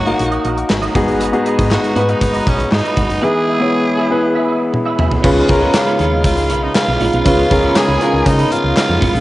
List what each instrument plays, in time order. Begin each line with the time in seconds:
Already playing: fm bass G#1, grand piano A#3 D#4 F#4 A#4 C#5, analog synth pad A#3 D#4 F#4, tenor saxophone F#4
0.06 grand piano A#3 D#4 F#4 A#4, clean electric guitar F#4 A#4 D#5, closed hi-hat
0.19 fm bass A#1, muted clean electric guitar stroke, closed hi-hat
0.31 clean electric guitar F#4 A#4 D#5, closed hi-hat
0.44 fm bass A#1, clean electric guitar F#4 A#4 D#5, closed hi-hat
0.57 muted clean electric guitar stroke, closed hi-hat
0.69 fm bass G#1, muted clean electric guitar stroke, snare, clap
0.82 clean electric guitar F#4 A#4 D#5, closed hi-hat
0.94 fm bass G#1, grand piano G#2 B3 D#4 F#4 G#4, analog synth pad G#3 D#4 B4 A#5, clean electric guitar F#4 B4 D#5, kick, closed hi-hat
1.07 muted clean electric guitar stroke, closed hi-hat
1.20 clean electric guitar F#4 B4 D#5, closed hi-hat
1.32 grand piano B3 D#4 F#4 G#4, muted clean electric guitar stroke, closed hi-hat
1.45 clean electric guitar F#4 B4 D#5, closed hi-hat
1.57 fm bass G#2, clean electric guitar F#4 B4 D#5, kick, closed hi-hat
1.70 tenor saxophone F#4, muted clean electric guitar stroke, snare, clap
1.83 muted clean electric guitar stroke, closed hi-hat
1.95 fm bass G#2, grand piano B3 D#4 F#4 B4, clean electric guitar F#4 B4 D#5, closed hi-hat
2.08 tenor saxophone D#4, clean electric guitar F#4 B4 D#5, closed hi-hat
2.21 fm bass G#1, muted clean electric guitar stroke, kick, closed hi-hat
2.33 clean electric guitar F#4 B4 D#5, closed hi-hat
2.46 fm bass B1, tenor saxophone C#4, clean electric guitar F#4 B4 D#5, kick, closed hi-hat
2.59 muted clean electric guitar stroke, closed hi-hat
2.71 fm bass G#2, tenor saxophone D#4, muted clean electric guitar stroke, snare, clap
2.84 clean electric guitar F#4 B4 D#5, closed hi-hat
2.96 fm bass G#1, clean electric guitar F#4 B4 D#5, kick, closed hi-hat
3.09 fm bass F#1, muted clean electric guitar stroke, closed hi-hat
3.21 grand piano E3 B3 E4 G#4 B4, analog synth pad B3 E4, clean electric guitar G#4 B4 E5, tenor saxophone G#4
3.34 muted clean electric guitar stroke
3.47 clean electric guitar G#4 B4 E5
3.60 grand piano B3 E4 G#4 C#5, clean electric guitar G#4 B4 E5
3.72 muted clean electric guitar stroke
3.85 muted clean electric guitar stroke
3.97 clean electric guitar G#4 B4 E5
4.10 grand piano B3 E4 G#4 B4, clean electric guitar G#4 B4 E5
4.22 muted clean electric guitar stroke
4.35 clean electric guitar G#4 B4 E5
4.48 clean electric guitar G#4 B4 E5
4.60 muted clean electric guitar stroke
4.73 muted clean electric guitar stroke, high tom
4.85 clean electric guitar G#4 B4 E5
4.98 clean electric guitar G#4 B4 E5, mid tom
5.11 muted clean electric guitar stroke, floor tom
5.23 fm bass C#2, grand piano C#3 C#4 F4 G#4 B4, analog synth pad C#3 G#3 B3 D#4 F4, clean electric guitar C#4 F4 B4, kick, crash
5.48 fm bass C#2, grand piano C#4 F4 G#4 A#4, muted clean electric guitar stroke, kick, closed hi-hat
5.61 grand piano C#4 F4 G#4 B4, clean electric guitar C#4 F4 B4
5.74 tenor saxophone F4, violin section F5, snare, clap, closed hi-hat, tambourine
5.86 clean electric guitar C#4 F4 B4
5.99 fm bass D#2, clean electric guitar C#4 F4 B4, closed hi-hat
6.12 muted clean electric guitar stroke
6.24 fm bass C#2, tenor saxophone F4, violin section F5, kick, closed hi-hat
6.37 muted clean electric guitar stroke, closed hi-hat
6.49 fm bass B1, clean electric guitar C#4 F4 B4, closed hi-hat
6.62 tenor saxophone D#4, violin section D#5, muted clean electric guitar stroke
6.75 tenor saxophone F4, violin section F5, muted clean electric guitar stroke, snare, clap, closed hi-hat, tambourine
6.87 fm bass B1, muted clean electric guitar stroke
7.00 fm bass A#1, clean electric guitar C#4 F4 B4, open hi-hat
7.12 fm bass B1, clean electric guitar C#4 F4 B4, closed hi-hat
7.25 fm bass C#2, grand piano C#3 C#4 F4 G#4 B4, clean electric guitar C#4 F4 B4, tenor saxophone F4, violin section F5, kick, closed hi-hat
7.50 fm bass C#2, grand piano C#4 F4 G#4 A#4, muted clean electric guitar stroke, kick, closed hi-hat
7.63 clean electric guitar C#4 F4 B4
7.75 tenor saxophone G#4, violin section G#5, muted clean electric guitar stroke, snare, clap, closed hi-hat, tambourine
7.87 fm bass C#2, clean electric guitar C#4 F4 B4
8.00 clean electric guitar C#4 F4 B4, grand piano C#4 F4 G#4 A#4, closed hi-hat
8.12 fm bass C#2, muted clean electric guitar stroke
8.25 fm bass C#3, tenor saxophone D#4, violin section D#5, muted clean electric guitar stroke, kick, closed hi-hat
8.38 clean electric guitar C#4 F4 B4, closed hi-hat
8.51 tenor saxophone F4, violin section F5, muted clean electric guitar stroke, closed hi-hat
8.63 fm bass C#2, muted clean electric guitar stroke
8.76 tenor saxophone F4, violin section F5, muted clean electric guitar stroke, snare, clap, closed hi-hat, tambourine
8.88 fm bass F2, muted clean electric guitar stroke
9.00 fm bass G#1, clean electric guitar C#4 F4 B4, kick, open hi-hat
9.13 fm bass A#1, clean electric guitar C#4 F4 B4, closed hi-hat